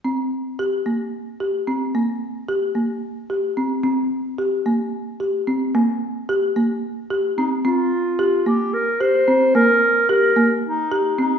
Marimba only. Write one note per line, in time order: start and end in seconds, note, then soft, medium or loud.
0.05 0.34 C4 medium
0.59 0.74 G4 medium
0.86 1.16 A#3 soft
1.40 1.55 G4 soft
1.67 1.82 C4 soft
1.95 2.25 A#3 medium
2.49 2.63 G4 medium
2.75 3.05 A#3 soft
3.30 3.45 G4 soft
3.57 3.72 C4 medium
3.84 4.14 C4 medium
4.38 4.53 G4 medium
4.66 4.96 A#3 medium
5.20 5.35 G4 soft
5.47 5.62 C4 medium
5.75 6.05 A#3 medium
6.29 6.44 G4 medium
6.56 6.86 A#3 medium
7.10 7.25 G4 medium
7.38 7.53 C4 medium
7.65 7.95 C4 medium
8.19 8.34 G4 medium
8.46 8.76 A#3 medium
9.01 9.16 G4 medium
9.28 9.43 C4 medium
9.55 9.85 A#3 medium
10.09 10.24 G4 medium
10.36 10.67 A#3 medium
10.92 11.06 G4 medium
11.19 11.34 C4 medium